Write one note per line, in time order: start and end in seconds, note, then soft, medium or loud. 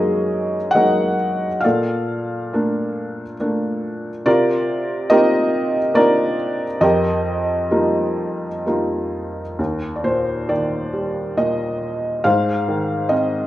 0.00 1.60 F#2 medium
0.00 0.56 F#3 soft
0.00 0.56 G#3 soft
0.00 0.56 A#3 soft
0.00 0.56 D#4 soft
0.00 1.66 G#4 soft
0.00 0.75 A#4 medium
0.00 1.65 C#5 medium
0.00 0.73 D#5 medium
0.71 1.46 F#3 soft
0.71 1.65 F#5 medium
0.75 1.46 G#3 soft
0.75 1.47 A#3 soft
0.75 1.47 D#4 soft
0.75 1.60 A#4 medium
0.75 1.60 D#5 medium
1.61 3.36 A4 medium
1.61 3.35 D5 medium
1.61 3.34 F5 medium
1.65 4.22 A#2 medium
2.53 3.22 A3 soft
2.53 3.23 A#3 soft
2.53 3.23 D4 medium
3.40 4.09 A3 soft
3.40 4.09 A#3 soft
3.40 4.09 D4 soft
4.26 6.78 C3 medium
4.26 5.10 F4 medium
4.26 5.09 A#4 medium
4.26 5.13 D5 medium
5.10 5.78 A#3 medium
5.10 5.78 C4 soft
5.10 5.79 D#4 soft
5.10 5.78 F4 medium
5.10 6.34 G4 medium
5.10 5.95 A#4 medium
5.10 5.97 D#5 loud
5.94 6.64 A#3 soft
5.94 6.64 C4 soft
5.94 6.64 D4 soft
5.94 6.64 D#4 soft
5.94 6.64 F4 medium
5.94 6.79 A#4 medium
5.94 6.84 D5 loud
6.81 9.55 F2 medium
6.81 8.63 G4 medium
6.81 8.63 A#4 medium
6.81 8.62 D#5 medium
7.71 8.47 G3 soft
7.71 8.47 A#3 soft
7.71 8.48 D#4 soft
7.71 8.48 F4 medium
8.66 9.40 G3 soft
8.66 9.41 A#3 soft
8.66 9.41 D#4 soft
8.66 9.41 F4 soft
9.59 12.21 D#2 medium
9.96 10.03 D5 soft
10.04 11.36 A#2 soft
10.04 10.50 C5 medium
10.49 12.21 D#3 soft
10.49 11.34 D5 medium
10.93 12.21 G3 soft
11.37 12.22 A#2 soft
11.37 12.21 D#5 medium
12.24 13.47 G#2 medium
12.24 13.47 C5 medium
12.24 13.13 F5 medium
12.68 13.47 D#3 soft
13.09 13.47 C4 soft
13.09 13.47 D#5 medium